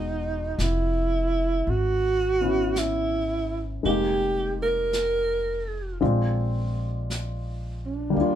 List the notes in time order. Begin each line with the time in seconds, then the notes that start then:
Already playing: E1 G#3 B3 D#4 F#4 D#5
0.58 F1 E4, brush sweep, snare, hi-hat pedal
1.67 G#1 F#4, brush sweep
2.41 B3 C#4 E4
2.76 E4, brush sweep, snare, hi-hat pedal
3.83 F1 G#3 A#3 D#4 G4, brush sweep
3.88 G4
4.62 A#4
4.93 brush sweep, snare, hi-hat pedal
6.01 A#1 G#3 C4 D4 F4, brush sweep
7.10 brush sweep, snare, hi-hat pedal
7.86 D4
8.10 G3 A#3
8.16 D#2 D5, brush sweep
8.21 F4